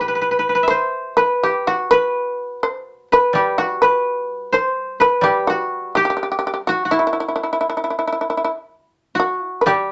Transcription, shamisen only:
0.00 0.64 B4 medium
0.68 1.13 C5 medium
1.17 1.40 B4 medium
1.43 1.65 G4 medium
1.67 1.89 F#4 medium
1.91 2.59 B4 medium
2.63 3.08 C5 medium
3.13 3.34 B4 medium
3.35 3.57 G4 medium
3.58 3.80 F#4 medium
3.82 4.49 B4 medium
4.54 4.98 C5 medium
5.01 5.23 B4 medium
5.24 5.46 G4 medium
5.47 5.92 F#4 medium
5.95 6.02 G4 medium
6.05 6.09 G4 soft
6.10 6.16 G4 medium
6.17 6.22 G4 soft
6.23 6.30 G4 soft
6.32 6.38 G4 soft
6.39 6.46 G4 soft
6.47 6.52 G4 soft
6.54 6.61 G4 soft
6.67 6.90 F#4 medium
6.91 6.98 E4 medium
6.99 7.06 E4 soft
7.07 7.12 E4 soft
7.13 7.19 E4 soft
7.20 7.27 E4 soft
7.28 7.34 E4 soft
7.36 7.42 E4 soft
7.43 7.51 E4 soft
7.53 7.59 E4 soft
7.61 7.67 E4 soft
7.70 7.76 E4 soft
7.77 7.83 E4 soft
7.84 7.89 E4 soft
7.90 7.97 E4 soft
7.99 8.05 E4 soft
8.07 8.11 E4 soft
8.12 8.20 E4 soft
8.21 8.28 E4 soft
8.30 8.36 E4 soft
8.37 8.43 E4 soft
8.45 8.52 E4 soft
9.20 9.45 F#4 medium
9.45 9.58 E4 medium
9.61 9.67 B4 soft
9.67 9.92 G4 medium

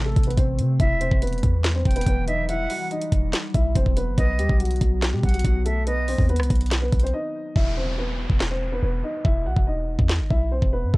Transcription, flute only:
0.80 1.19 E5 loud
1.85 2.25 G5 medium
2.28 2.48 E5 loud
2.49 2.89 F#5 loud
4.18 4.57 D#5 loud
5.24 5.63 F#5 medium
5.66 5.86 E5 medium
5.86 6.26 D#5 loud

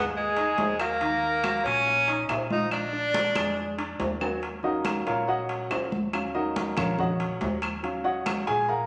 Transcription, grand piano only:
0.00 0.29 G#3 medium
0.00 0.29 G#4 medium
0.37 0.72 D#4 medium
0.37 0.72 D#5 medium
0.80 0.97 F#3 medium
0.80 0.97 F#4 medium
1.01 1.36 D#3 medium
1.01 1.36 D#4 medium
1.43 1.79 F#3 medium
1.43 1.79 F#4 medium
1.87 2.04 A#3 medium
1.87 2.04 A#4 medium
2.07 2.43 D#4 medium
2.07 2.43 D#5 medium
2.50 2.85 F3 medium
2.50 2.86 F4 medium
2.93 3.28 D4 medium
2.93 3.28 D5 medium
3.35 3.71 G#3 medium
3.35 3.71 G#4 medium
3.78 4.13 D4 medium
3.78 4.14 D5 medium
4.21 4.39 F#3 medium
4.21 4.39 F#4 medium
4.63 5.68 F#3 medium
4.63 5.69 C#4 medium
4.63 5.04 D#4 medium
4.63 5.04 F#4 medium
4.63 5.04 A#4 medium
4.63 5.04 D#5 medium
4.63 5.05 F5 medium
5.07 5.28 F4 medium
5.07 5.28 A#4 medium
5.07 5.27 C#5 medium
5.07 5.28 F5 medium
5.28 5.89 F#4 medium
5.28 5.88 C#5 medium
5.28 5.89 D#5 medium
5.28 5.88 F#5 medium
5.70 5.90 F#3 soft
5.70 5.90 C#4 soft
5.70 5.90 F4 soft
6.13 7.80 F#3 medium
6.13 7.80 C#4 medium
6.13 6.76 F5 medium
6.35 6.75 D#4 medium
6.35 6.75 F#4 medium
6.35 6.75 A#4 medium
6.35 6.75 D#5 medium
6.78 6.99 F4 medium
6.78 6.99 A#4 medium
6.78 6.98 C#5 medium
6.78 6.99 F5 medium
6.99 7.60 F#4 medium
6.99 7.60 C#5 medium
6.99 7.60 D#5 medium
6.99 7.59 F#5 medium
7.83 8.45 F#3 medium
7.83 8.45 C#4 soft
7.83 8.45 F5 medium
8.04 8.45 F#4 medium
8.04 8.45 C#5 medium
8.04 8.45 D#5 medium
8.04 8.45 F#5 medium
8.47 8.69 G#4 medium
8.47 8.69 G#5 loud
8.69 8.86 A#4 medium
8.69 8.86 F5 medium
8.69 8.86 F#5 medium
8.69 8.86 A#5 medium

